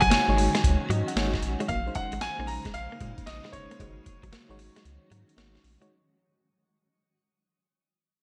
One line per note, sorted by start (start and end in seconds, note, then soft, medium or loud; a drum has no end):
0.00 0.09 A#1 medium
0.00 1.67 D#3 medium
0.00 1.67 F#3 medium
0.00 0.07 F#3 medium
0.00 0.15 G#3 medium
0.00 1.65 G#3 medium
0.00 1.67 C#4 medium
0.00 0.15 D#4 medium
0.00 0.15 F#4 medium
0.00 1.67 F#4 medium
0.00 0.16 C#5 loud
0.00 1.38 G#5 loud
0.00 kick medium
0.00 closed hi-hat medium
0.10 0.18 G#1 medium
0.10 0.20 A#3 medium
0.10 snare loud
0.10 closed hi-hat medium
0.28 0.48 G#1 medium
0.28 1.06 G#3 medium
0.28 1.06 D#4 medium
0.28 1.06 F#4 medium
0.28 1.06 C#5 medium
0.38 muted clean electric guitar stroke soft
0.38 open hi-hat medium
0.55 0.60 G#3 medium
0.55 snare medium
0.55 closed hi-hat soft
0.64 0.77 C#2 medium
0.64 kick medium
0.64 closed hi-hat medium
0.89 1.03 G#2 loud
0.89 1.00 F#3 medium
0.89 1.06 D#5 medium
0.89 closed hi-hat medium
1.08 1.16 F#5 medium
1.08 closed hi-hat medium
1.16 1.36 G#1 loud
1.16 1.52 G#3 medium
1.16 1.26 A#3 medium
1.16 1.52 D#4 medium
1.16 1.52 F#4 medium
1.16 1.52 C#5 loud
1.16 1.66 G#5 medium
1.16 snare loud
1.16 closed hi-hat medium
1.33 muted clean electric guitar stroke soft
1.33 kick loud
1.33 snare medium
1.42 1.56 A#1 medium
1.42 closed hi-hat medium
1.60 1.69 G#3 medium
1.60 1.65 G#3 medium
1.60 1.69 D#4 medium
1.60 1.69 F#4 medium
1.60 1.70 C#5 medium
1.60 closed hi-hat medium
1.68 1.89 A#1 loud
1.68 3.77 C#3 medium
1.68 5.86 G#3 medium
1.68 3.78 A#3 medium
1.68 1.79 A#3 medium
1.68 3.78 D#4 medium
1.68 3.77 C5 medium
1.68 1.96 F5 loud
1.68 kick loud
1.68 closed hi-hat medium
1.86 2.28 G#3 medium
1.86 2.28 C#4 medium
1.86 2.29 D#4 medium
1.86 2.29 C5 medium
1.95 2.23 F#5 medium
1.95 muted clean electric guitar stroke soft
1.95 kick medium
1.95 closed hi-hat medium
2.12 2.19 G#1 medium
2.12 2.18 G#3 medium
2.12 closed hi-hat medium
2.21 2.29 A#1 soft
2.21 2.46 G#5 loud
2.21 snare loud
2.21 closed hi-hat medium
2.39 2.59 A#1 loud
2.39 3.25 G#3 medium
2.39 2.45 A#3 medium
2.39 3.25 C#4 medium
2.39 3.25 D#4 medium
2.39 3.25 C5 medium
2.47 2.75 A#5 loud
2.47 muted clean electric guitar stroke soft
2.47 open hi-hat medium
2.65 2.71 G#3 medium
2.65 kick medium
2.65 snare medium
2.65 closed hi-hat soft
2.74 2.87 A#1 medium
2.74 3.28 F5 loud
2.74 muted clean electric guitar stroke soft
2.74 closed hi-hat medium
2.92 2.97 A#3 medium
3.00 3.14 A#2 loud
3.00 3.11 G#3 medium
3.00 kick medium
3.00 closed hi-hat medium
3.18 kick loud
3.18 closed hi-hat medium
3.26 3.40 A#1 loud
3.26 3.51 D#5 medium
3.26 snare loud
3.26 closed hi-hat medium
3.44 3.50 G#3 medium
3.44 snare medium
3.53 3.66 G1 loud
3.53 3.77 G#3 medium
3.53 3.77 C#4 medium
3.53 3.77 D#4 medium
3.53 3.77 C5 medium
3.53 5.33 C#5 medium
3.53 muted clean electric guitar stroke soft
3.53 kick medium
3.53 closed hi-hat medium
3.71 3.76 A#3 medium
3.71 closed hi-hat soft
3.79 4.00 G#1 loud
3.79 5.88 D#3 medium
3.79 5.88 F#3 medium
3.79 4.36 G#3 medium
3.79 3.90 G#3 medium
3.79 5.88 C#4 medium
3.79 4.36 D#4 medium
3.79 5.88 F#4 medium
3.79 4.36 F#4 medium
3.79 3.88 C5 medium
3.79 kick loud
3.79 closed hi-hat medium
3.87 4.40 C#5 medium
4.06 muted clean electric guitar stroke soft
4.06 kick loud
4.06 closed hi-hat medium
4.23 4.30 A#1 medium
4.23 4.28 F#3 medium
4.23 kick medium
4.23 closed hi-hat medium
4.32 4.39 G#1 soft
4.32 4.42 A#3 medium
4.32 snare loud
4.32 closed hi-hat medium
4.49 4.69 G#1 medium
4.49 5.27 G#3 loud
4.49 5.27 D#4 medium
4.49 5.27 F#4 medium
4.49 5.27 C#5 loud
4.59 muted clean electric guitar stroke soft
4.59 open hi-hat medium
4.76 4.81 G#3 medium
4.76 snare medium
4.76 closed hi-hat soft
4.85 4.98 C#2 loud
4.85 closed hi-hat medium
5.11 5.24 G#2 loud
5.11 5.21 F#3 medium
5.11 closed hi-hat medium
5.29 closed hi-hat medium
5.37 5.57 G#1 loud
5.37 5.73 G#3 medium
5.37 5.48 A#3 medium
5.37 5.73 D#4 medium
5.37 5.73 F#4 medium
5.37 5.73 C#5 loud
5.37 snare loud
5.37 closed hi-hat medium
5.55 muted clean electric guitar stroke soft
5.55 snare medium
5.64 5.77 A#1 medium
5.64 open hi-hat medium
5.80 5.90 G#3 medium
5.80 5.86 G#3 medium
5.80 5.90 D#4 medium
5.80 5.90 F#4 medium
5.80 5.90 C#5 loud
5.80 closed hi-hat soft